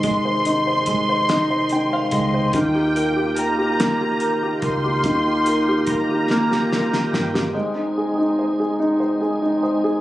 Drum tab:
HH |x-x-x-x-x-x-|x-x-x-x-x-x-|x-x-x-------|------------|
SD |------o-----|------o-----|------oooooo|------------|
BD |o---o-----o-|o---------o-|o---o-------|------------|